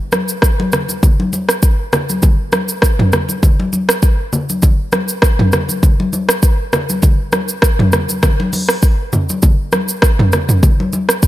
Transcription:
0.12 cross-stick, high conga, shaker
0.28 shaker
0.42 kick, cross-stick, shaker
0.60 high conga
0.72 cross-stick, low conga, shaker
0.89 high conga, shaker
1.03 kick, low conga, shaker
1.20 high conga
1.33 high conga, shaker
1.49 cross-stick, shaker
1.62 kick, shaker
1.93 cross-stick, low conga, shaker
2.09 high conga, shaker
2.22 kick, low conga, shaker
2.52 cross-stick, high conga, shaker
2.69 shaker
2.82 kick, cross-stick, shaker
2.99 mid tom, high conga
3.12 cross-stick, low conga, shaker
3.29 high conga, shaker
3.43 kick, low conga, shaker
3.60 high conga
3.73 high conga, shaker
3.89 cross-stick, shaker
4.02 kick, shaker
4.33 low conga, shaker
4.49 high conga, shaker
4.62 kick, low conga, shaker
4.92 cross-stick, high conga, shaker
5.08 shaker
5.22 kick, cross-stick, shaker
5.39 mid tom, high conga
5.52 cross-stick, low conga, shaker
5.69 high conga, shaker
5.83 kick, low conga, shaker
6.00 high conga
6.13 high conga, shaker
6.29 cross-stick, shaker
6.43 kick, shaker
6.73 cross-stick, low conga, shaker
6.89 high conga, shaker
7.02 kick, low conga, shaker
7.32 cross-stick, high conga, shaker
7.49 shaker
7.62 kick, cross-stick, shaker
7.79 mid tom, high conga
7.92 cross-stick, low conga, shaker
8.09 high conga, shaker
8.23 kick, cross-stick, low conga, shaker
8.40 high conga
8.53 open hi-hat, high conga, shaker
8.69 cross-stick, shaker
8.82 kick, shaker
9.13 mid tom, low conga, shaker
9.29 high conga, shaker
9.42 kick, low conga, shaker
9.72 cross-stick, high conga, shaker
9.88 shaker
10.02 kick, cross-stick, shaker
10.19 mid tom, high conga
10.32 cross-stick, low conga, shaker
10.49 mid tom, high conga, shaker
10.63 kick, low conga, shaker
10.80 high conga
10.93 high conga, shaker
11.09 cross-stick, shaker
11.23 kick, shaker

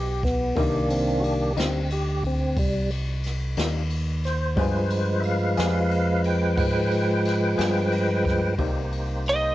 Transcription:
Already playing: B1 G4
0.23 B3, kick, snare, ride
0.55 C2 C3 D#3 G3 A#3 D4 D#4 G4, kick, ride
0.90 C4, ride
1.20 F#4 G4
1.24 ride
1.57 D2 C3 G3 A#3 C4 D#4, snare, ride
1.90 G4, ride
2.23 C4, kick, ride
2.57 C2 G3, kick, ride
2.90 ride
3.24 snare, ride
3.57 D#2 C3 G3 A#3 D#4, snare, ride
3.90 ride
4.24 C5, snare, ride
4.56 G2 F3 G3 G#3 B3 F4 G#4 B4, kick, ride
4.90 ride
5.20 E5, ride
5.25 F5
5.57 F2 G3 B3 F4 G#4, snare, ride
5.91 ride
6.24 G5, ride
6.55 G#2 F#5 G5, kick, ride
6.91 ride
7.25 snare, ride
7.58 G2 G3 B3 F4 G#4, snare, ride
7.92 ride
8.25 kick, snare, ride
8.58 C2 C3 G3 A#3 D#4 G4 C5, kick, ride
8.92 ride
9.26 D#5, ride

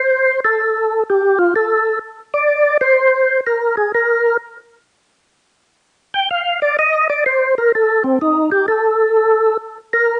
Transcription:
Already playing: C5
0.45 A4
1.10 G4
1.39 F4
1.56 A4
2.34 D5
2.81 C5
3.47 A#4
3.77 G#4
3.95 A#4
6.14 G5
6.31 F5
6.62 D5
6.79 D#5
7.10 D5
7.26 C5
7.58 A#4
7.75 A4
8.04 C4
8.21 D#4
8.52 G4
8.68 A4
9.93 A#4

